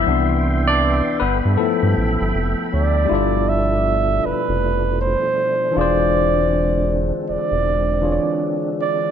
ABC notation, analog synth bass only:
X:1
M:4/4
L:1/16
Q:"Swing 16ths" 1/4=79
K:Gmix
V:1 name="Analog synth bass" clef=bass
C,,4- C,, z G,,, G,, z G,, A,,, G,,, F,,, z D,,2 | G,,,6 F,,, F,,,4 z3 E,,,2- | E,,,6 E,,, E,,,4 z4 z |]